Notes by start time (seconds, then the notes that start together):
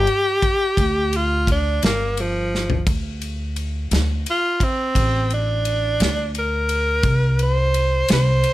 Already playing: G4
0.07 ride
0.42 kick, ride
0.77 D2, kick, ride
1.13 ride
1.17 F4
1.47 kick, ride
1.52 D4
1.83 G1 A#3, snare, ride
2.17 F3, ride
2.55 snare
2.70 floor tom
2.87 D2, kick, ride
3.21 ride
3.56 ride
3.91 D2, snare, ride
4.26 ride
4.30 F4
4.60 C4, kick, ride
4.95 A1, kick, ride
5.30 D4, ride
5.65 ride
6.00 D2, snare, ride
6.35 ride
6.39 A#4
6.69 ride
7.03 C2, kick, ride
7.39 ride
7.43 C5
7.74 ride
8.08 C2, snare, ride
8.13 C5
8.44 ride